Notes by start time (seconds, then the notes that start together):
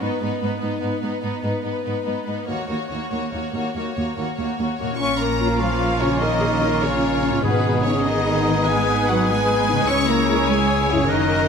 0.02 G#2 B3 D#4 B4
0.22 G#2 B3 D#4 B4
0.41 G#2 B3 D#4 B4
0.60 G#2 B3 D#4 B4
0.80 G#2 B3 D#4 B4
1.00 G#2 B3 D#4 B4
1.21 G#2 B3 D#4 B4
1.42 G#2 B3 D#4 B4
1.63 G#2 B3 D#4 B4
1.83 G#2 B3 D#4 B4
2.04 G#2 B3 D#4 B4
2.25 G#2 B3 D#4 B4
2.46 D#2 A#3 F#4 C#5
2.68 D#2 A#3 F#4 C#5
2.90 D#2 A#3 F#4 C#5
3.11 D#2 A#3 F#4 C#5
3.32 D#2 A#3 F#4 C#5
3.53 D#2 A#3 F#4 C#5
3.75 D#2 A#3 F#4 C#5
3.95 D#2 A#3 F#4 C#5
4.16 D#2 A#3 F#4 C#5
4.36 D#2 A#3 C#5
4.41 F#4
4.56 D#2 A#3 C#5
4.60 F#4
4.76 C#5
4.80 D#2 A#2 A#3 F#4
4.86 A#3
4.91 C#4
4.96 A#1 F4 C#6
5.00 A#3 C#4 F4 C#5 C#6
5.19 A#3 A#4 A#5
5.40 C#4 F4
5.58 F3 F4 F5
6.00 C#3 C#4 F4 C#5
6.21 D#3 D#4 A#4 D#5
6.41 G#4
6.61 C#4 F4 A#4
6.83 C#3 C#4 F4 C#5
7.23 C#4 F4
7.27 G#2
7.32 B3
7.36 D#4
7.41 G#1 G#2 B2 B3 G#4 B4 D#6
7.45 B3 D#4
7.84 C#3 B3 C#4 D#4 C#5
8.04 D#3 D#4 D#5
8.48 B3 D#4
8.66 G#3 G#4 B4 G#5
9.08 F#3 B3 D#4 F#4 F#5
9.28 G#3 G#4 B4 G#5
9.69 C#3 B3 D#4
9.75 C#4
9.80 E4
9.85 C#2 C#4 E4 G#4 C#5 C#6 E6
9.89 C#4 C#5
10.07 A#3 A#4 A#5
10.28 G#3 E4
10.47 G#3 G#4 G#5
10.89 F#2 C#3 G#3 C#4 E4 C#5
10.97 C#4 F#4
11.06 F#1 A#3 C#4 A#4 F#6
11.10 D#3 D#4 D#5